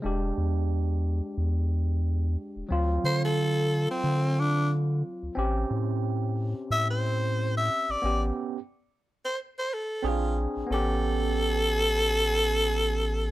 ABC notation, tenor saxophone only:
X:1
M:4/4
L:1/16
Q:"Swing 16ths" 1/4=90
K:D
V:1 name="Tenor saxophone"
z16 | z2 =c A4 =C3 D2 z4 | z8 e ^B4 e2 d- | d z6 =c z c A2 =F2 z2 |
A16 |]